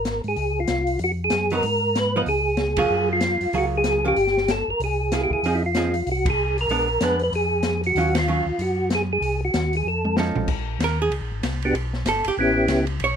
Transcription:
Already playing: G#1 A#4
0.05 snare, closed hi-hat
0.24 G#2, open hi-hat
0.28 G#4
0.36 C#2, open hi-hat
0.60 F4
0.67 C2, snare, closed hi-hat
0.87 open hi-hat
0.99 F2, open hi-hat
1.04 F#4
1.24 G#4
1.30 F#2, snare, closed hi-hat
1.50 F#3 B3 D#4, open hi-hat
1.55 A#4
1.63 G#2, open hi-hat
1.95 B4, snare, closed hi-hat
2.16 F3 B3 D#4 B4
2.26 C#2 G#4, open hi-hat
2.57 snare, closed hi-hat
2.77 F#3 A#3 F4 G#4, kick, ride
2.81 G#4
2.90 F#2
3.13 F4
3.21 snare, closed hi-hat
3.41 F#2, open hi-hat
3.53 C#2 F#3 A#3 F4 G#4, open hi-hat
3.58 F#4
3.77 G#4
3.84 snare, closed hi-hat
4.05 F3 A#3 C#4 G4
4.16 G1, open hi-hat
4.27 snare
4.37 snare
4.48 A4, snare, closed hi-hat
4.68 G1 A#4
4.80 C2, open hi-hat
4.84 G#4
5.12 A#3 E4 G#4, snare, closed hi-hat
5.24 G4
5.30 C2 G#4, kick
5.42 F2 F3 C4 D#4 G#4, open hi-hat
5.55 E4
5.66 F4
5.75 F3 C4 D#4 G#4, snare, closed hi-hat
5.94 open hi-hat
6.06 C2, open hi-hat
6.12 F#4
6.25 kick, ride
6.30 G#4
6.58 A#4, open hi-hat
6.68 A#1 G#3 B3 D4, open hi-hat
7.01 F2 G#3 B3 D4 B4, snare, closed hi-hat
7.19 B4, open hi-hat
7.32 F2 G#4, open hi-hat
7.63 snare, closed hi-hat
7.84 F#4, open hi-hat
7.95 D#2 D#3 F#3 C#4 F4, open hi-hat
8.15 snare, ride
8.19 F4
8.28 D#3 F#3 C#4 F4
8.46 D#2
8.58 F#2 F#4, open hi-hat
8.90 snare, closed hi-hat
8.95 G#4
9.13 G#4
9.21 C2, open hi-hat
9.45 F#4
9.54 D#2, snare, closed hi-hat
9.73 G#4, open hi-hat
9.85 F2 A4
10.05 mid tom
10.17 F3 C#4 D#4 A4, snare
10.36 B1, floor tom
10.48 A#1, kick, crash
10.79 D#2, snare, hi-hat pedal, ride
10.84 A#4
11.02 G#4
11.10 C#2, ride
11.21 A#1
11.32 G#1
11.43 C2, snare, hi-hat pedal, ride
11.62 B3 D4 F#4 G4, ride
11.73 B1, ride
11.93 snare
12.05 G1 A4, snare, hi-hat pedal, ride
12.24 G1 G4, ride
12.37 A1 B3 C#4 E4 G4
12.68 C#2, snare, hi-hat pedal, ride
12.87 ride
13.00 B1, ride
13.04 C#5

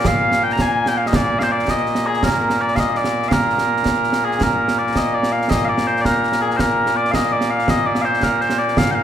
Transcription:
Already playing: A#2 A#3
0.05 F5, concert bass drum, snare
0.32 snare
0.43 G5
0.50 A#5, snare
0.59 G#5, concert bass drum, snare
0.86 G5, snare
0.98 F5
1.07 D#5
1.13 D5, concert bass drum, snare
1.39 C5 F5, snare
1.52 D5
1.59 snare
1.68 D#5, concert bass drum, snare
1.86 snare
1.95 snare
2.07 G#4
2.13 snare
2.23 A#4, concert bass drum, snare
2.50 snare
2.61 D5
2.68 snare
2.76 D#5 F5, concert bass drum, snare
2.89 D#5
2.95 D5, snare
3.04 snare
3.22 snare
3.28 F5, concert bass drum, snare
3.33 A#4
3.50 snare
3.58 snare
3.77 snare
3.85 concert bass drum, snare
4.04 snare
4.13 snare
4.25 G#4
4.31 snare
4.41 A#4, concert bass drum, snare
4.68 snare
4.78 D5
4.87 snare
4.96 D#5, concert bass drum, snare
5.14 D5
5.23 snare
5.32 F5
5.42 snare
5.50 D#5, concert bass drum, snare
5.65 D5 F5
5.78 snare
5.87 C5
5.96 snare
6.01 A#4 D5, concert bass drum, snare
6.23 snare
6.32 snare
6.42 G#4
6.51 snare
6.57 A#4 C5, concert bass drum, snare
6.86 snare
6.97 D5
7.05 snare
7.11 D#5 F5, concert bass drum, snare
7.32 D5
7.41 snare
7.50 F5
7.59 snare
7.68 D#5, concert bass drum, snare
7.86 D5
7.95 snare
8.01 C5 F5
8.14 snare
8.23 A#4, concert bass drum, snare
8.41 C5, snare
8.50 snare
8.59 D5
8.68 snare
8.77 F5, concert bass drum, snare
8.91 F5 G5

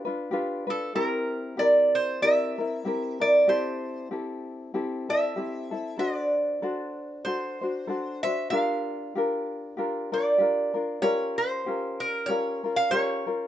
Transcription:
0.05 D4 F4 B4
0.31 D4 F4 G4 B4
0.67 D4 F4 A4 B4
0.95 C4 E4 G4 A#4
1.57 C4 E4 G4 A#4 D5
1.95 C5
2.22 C4 E4 G4 A#4 E5
2.58 C4 E4 A#4
2.85 C4 E4 G4 A#4
3.20 C4 E4 A#4 D5
3.48 C4 E4 G4 A4 C5
4.11 C4 E4 G4 A4
4.74 C4 E4 G4 A4
5.09 C4 E4 A4 E5
5.36 C4 E4 G4 A4
5.71 C4 E4 A4
5.98 D4 F#4 A4 C5 D5
6.62 D4 F#4 A4 C5
7.25 D4 F#4 A4 C5
7.61 D4 F#4 C5
7.87 D4 F#4 A4 C5
8.23 D4 F#4 C5 E5
8.50 D4 F4 G4 A#4 F5
9.15 D4 F4 G4 A#4
9.77 D4 F4 G4 A#4
10.12 D4 F4 A#4 D5
10.38 D4 F4 G4 A#4
10.74 D4 F4 A#4
11.02 C#4 F4 G4 A#4 C#5
11.38 C5
11.66 C#4 F4 G4 A#4
12.00 A#4
12.26 C#4 G4 A#4 C#5
12.30 F4
12.64 C#4 F4 A#4
12.76 F5
12.91 C#4 F4 G4 A#4 C#5
13.27 C#4 F4 A#4

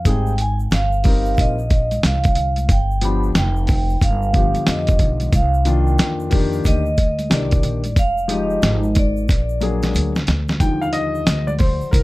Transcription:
0.05 G#1 G3 C4 D#4 G#4, kick, closed hi-hat, shaker
0.09 G5
0.27 shaker
0.38 G#5, closed hi-hat, shaker
0.60 shaker
0.71 G1 F5, snare, closed hi-hat, low conga, shaker
0.92 shaker
1.04 G3 C4 D#4 A#4, kick, open hi-hat, low conga, shaker
1.26 shaker
1.35 A#1 F5, kick, shaker
1.39 D#5, closed hi-hat
1.59 shaker
1.70 kick, closed hi-hat, shaker
1.91 closed hi-hat, high conga, shaker
2.03 C2 F5, snare, closed hi-hat, high conga, shaker
2.24 kick, closed hi-hat, shaker
2.35 closed hi-hat, low conga, shaker
2.56 closed hi-hat, high conga, shaker
2.69 G1 G5, kick, closed hi-hat, shaker
2.91 shaker
3.01 F3 B3 D4 G4 B5, closed hi-hat, shaker
3.23 shaker
3.35 F1 G5, snare, closed hi-hat, low conga, shaker
3.56 shaker
3.67 kick, open hi-hat, low conga, shaker
3.90 shaker
4.01 G1 F5, kick, closed hi-hat, shaker
4.22 shaker
4.33 D3 F3 B3 G4, kick, closed hi-hat, shaker
4.55 muted upright bass stroke, closed hi-hat, high conga, shaker
4.67 F2 D#5, snare, closed hi-hat, high conga, shaker
4.87 kick, closed hi-hat, shaker
4.99 B1, kick, closed hi-hat, low conga, shaker
5.20 closed hi-hat, high conga, shaker
5.33 C2 F5, kick, closed hi-hat, shaker
5.54 shaker
5.65 D#3 A#3 D4 F4 G5, closed hi-hat, shaker
5.87 shaker
5.98 F2, snare, closed hi-hat, low conga, shaker
6.20 shaker
6.30 D#3 A#3 D4 G4, kick, open hi-hat, low conga, shaker
6.53 shaker
6.64 D2 D#5, kick, closed hi-hat, shaker
6.86 shaker
6.97 kick, closed hi-hat, shaker
7.19 closed hi-hat, high conga, shaker
7.30 C2 D#3 A#3 D4 G4 D5, snare, closed hi-hat, high conga, shaker
7.51 kick, closed hi-hat, shaker
7.63 A#1, closed hi-hat, low conga, shaker
7.84 closed hi-hat, high conga, shaker
7.96 F1 F5, kick, closed hi-hat, shaker
8.18 shaker
8.28 F3 G#3 D#4 G4, closed hi-hat, shaker
8.32 D#5
8.50 shaker
8.62 G#1, snare, closed hi-hat, low conga, shaker
8.83 shaker
8.95 D5, kick, closed hi-hat, low conga, shaker
9.16 shaker
9.28 A#1, kick, snare, closed hi-hat, shaker
9.49 shaker
9.61 F#3 A#3 D4 G#4, closed hi-hat, shaker
9.82 snare, closed hi-hat, high conga, shaker
9.94 D2, closed hi-hat, high conga, shaker
10.15 snare, shaker
10.27 D2, snare, closed hi-hat, low conga, shaker
10.48 snare, high conga, shaker
10.60 D#2 D3 F3 G3 G5, kick, closed hi-hat, shaker
10.81 F5, shaker
10.93 D#5, closed hi-hat, shaker
11.15 shaker
11.27 D2, snare, closed hi-hat, shaker
11.47 D5, high conga, shaker
11.59 C5, kick, open hi-hat, low conga, shaker
11.81 muted upright bass stroke, shaker
11.91 C2 A#4, kick, closed hi-hat, shaker

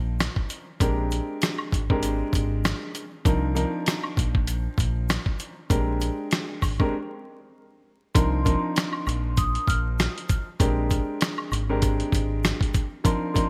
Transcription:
Already playing: A#1 F3 C4 D4 D#4 A#4
0.20 cross-stick, snare, closed hi-hat, shaker
0.36 kick
0.50 closed hi-hat, shaker
0.80 A#1 G#3 C4 D4 G4 A#4, kick, closed hi-hat, shaker
1.11 closed hi-hat, shaker
1.42 cross-stick, snare, closed hi-hat, shaker
1.58 high woodblock
1.72 G#1, kick, closed hi-hat, shaker
1.90 G#3 C4 D4 G4 A#4, kick
2.03 closed hi-hat, shaker
2.33 G#1, kick, closed hi-hat, shaker
2.65 cross-stick, snare, closed hi-hat, shaker
2.95 closed hi-hat, shaker
3.25 C2 F3 C4 D4 D#4 A#4, kick, closed hi-hat, shaker
3.55 F3 C4 D4 D#4 A#4, closed hi-hat, shaker
3.86 cross-stick, snare, closed hi-hat, shaker
4.04 high woodblock
4.17 A#1, kick, closed hi-hat, shaker
4.35 kick
4.47 closed hi-hat, shaker
4.78 A#1, kick, closed hi-hat, shaker
5.09 cross-stick, snare, closed hi-hat, shaker
5.26 kick
5.39 closed hi-hat, shaker
5.70 A#1 G#3 C4 D4 G4 A#4, kick, closed hi-hat, shaker
6.01 closed hi-hat, shaker
6.31 cross-stick, snare, closed hi-hat, shaker
6.62 G#1, kick, open hi-hat, high woodblock, shaker
6.79 G#3 C4 D4 G4 A#4, kick, high woodblock
8.15 C2 F3 C4 D4 D#4 A#4 C6, kick, closed hi-hat, shaker
8.45 F3 C4 D4 D#4 A#4, kick, closed hi-hat, shaker
8.76 cross-stick, snare, closed hi-hat, shaker
8.93 high woodblock
9.07 A#1, closed hi-hat, high woodblock, shaker
9.37 D#6, kick, closed hi-hat, shaker
9.55 closed hi-hat
9.68 A#1 F6, kick, closed hi-hat, shaker
9.99 cross-stick, snare, closed hi-hat, shaker
10.18 closed hi-hat
10.29 kick, closed hi-hat, shaker
10.59 A#1 G#3 C4 D4 G4 A#4, kick, closed hi-hat, shaker
10.90 kick, closed hi-hat, shaker
11.21 cross-stick, snare, closed hi-hat, shaker
11.38 high woodblock
11.52 G#1, closed hi-hat, high woodblock, shaker
11.69 G#3 C4 D4 G4 A#4
11.82 kick, closed hi-hat, shaker
12.00 closed hi-hat
12.12 G#1, kick, closed hi-hat, shaker
12.44 cross-stick, snare, closed hi-hat, shaker
12.61 kick, closed hi-hat
12.74 kick, closed hi-hat, shaker
13.04 F3 C4 D4 D#4 A#4 C6, kick, closed hi-hat, shaker
13.34 F3 C4 D4 D#4 A#4, kick, closed hi-hat, shaker

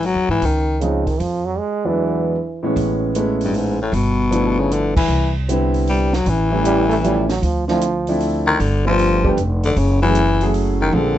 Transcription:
Already playing: G#1
0.03 F#3, open hi-hat
0.15 E2
0.28 G#2 E3
0.42 C#2 D#3, kick, open hi-hat
0.80 C#3 F3 G#3 C4 D#4, closed hi-hat
1.07 D#3, kick, open hi-hat
1.20 F2 F3, open hi-hat
1.45 F#3
1.58 G#3
1.85 E2 E3 F#3 G#3 B3 D4
2.63 A2 E3 G#3 B3 C#4
2.76 A1, kick, open hi-hat
3.15 G#3 A3 B3 C#4 E4, closed hi-hat
3.41 G2, open hi-hat
3.54 G#2, open hi-hat
3.82 A2
3.92 G1 B2, kick, open hi-hat
4.31 F3 A3 B3 D4 E4, closed hi-hat
4.60 C#3
4.72 D3, closed hi-hat
4.96 E3, kick, crash
5.08 C2
5.49 D3 G3 B3 C4 E4, closed hi-hat
5.74 open hi-hat
5.87 G3, open hi-hat
6.13 F#3, snare
6.26 A1 E3, kick, open hi-hat
6.51 E3 G3 A3 C#4 E4
6.65 G3, closed hi-hat
6.89 A3, open hi-hat
7.03 F3 G3 A3 C#4 E4, closed hi-hat
7.29 F#3, snare, open hi-hat
7.42 D2 F3, kick, open hi-hat
7.68 F3 A3 C4 D4 E4, snare
7.82 closed hi-hat
8.07 F3 A3 C4 D4 E4, open hi-hat
8.21 open hi-hat
8.47 D#3
8.59 G1 D3, kick, open hi-hat
8.85 F3 G3 A3 B3 D4 F4
8.99 open hi-hat
9.24 G3 A3 B3 D4 G4, kick
9.37 F1, closed hi-hat
9.63 D3, open hi-hat
9.76 F#1 C#3, kick, open hi-hat
10.02 E3 F#3 A3 C#4 E4 G#4
10.15 closed hi-hat
10.41 F#3 A3 C#4 E4 G#4, open hi-hat
10.54 open hi-hat
10.81 D#3
10.92 A#1 D3 F3 A#3 C4 D4 G#4, mid tom

